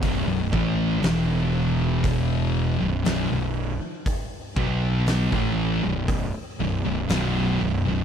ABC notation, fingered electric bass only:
X:1
M:4/4
L:1/16
Q:1/4=59
K:Em
V:1 name="Fingered electric bass" clef=bass
B,,,, B,,,, A,,,2 E,,,6- E,,, B,,,, B,,,, B,,,,2 z | z2 B,,,3 A,,,2 B,,,,2 z B,,,, B,,,, B,,,,2 B,,,, B,,,, |]